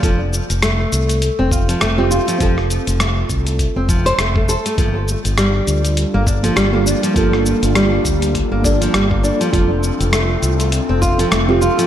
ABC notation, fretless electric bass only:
X:1
M:4/4
L:1/16
Q:"Swing 16ths" 1/4=101
K:Fmix
V:1 name="Fretless electric bass" clef=bass
F,,,2 z F,,,2 z C,,2 z F,,,2 z F,,,2 z2 | F,,,2 z F,,,2 z C,,2 z F,,,2 z F,,,2 z2 | G,,,2 z G,,,2 z D,,2 z G,,,2 z G,,,2 z2 | G,,,2 z G,,,2 z D,,2 z G,,,2 z G,,,2 z2 |
F,,,2 z F,,,2 z C,,2 z F,,,2 z F,,,2 z2 |]